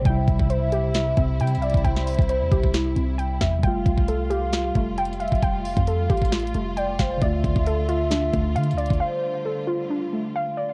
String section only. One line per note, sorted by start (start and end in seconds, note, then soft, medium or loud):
0.00 3.60 G3 medium
0.05 3.60 C3 medium
0.05 3.60 E4 loud
3.63 7.18 G3 medium
3.63 8.97 A3 medium
3.63 10.73 F4 loud
7.22 10.73 D3 medium
9.01 10.73 G3 medium